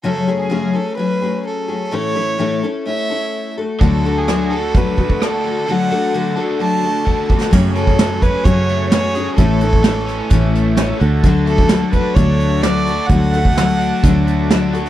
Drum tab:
CC |----------------|----------------|----------------|----------------|
HH |----------------|----------------|x---x---x---x---|----------------|
SD |----------------|----------------|----r-------r---|---------------o|
BD |----------------|----------------|o-------o-oo----|------------o-o-|

CC |x---------------|----------------|----------------|----------------|
HH |--x-x-x-x-x-x-x-|x-x-x-x-x-x-x-x-|x-x-x-x-x-x-x-x-|x-x-x-x-x-x-x-x-|
SD |----o-------o---|----o-o-----o---|----o-------o---|--o-o-------o--o|
BD |o--o--o-o-------|o--o----o-------|o--o--o-o-------|o--o----o-------|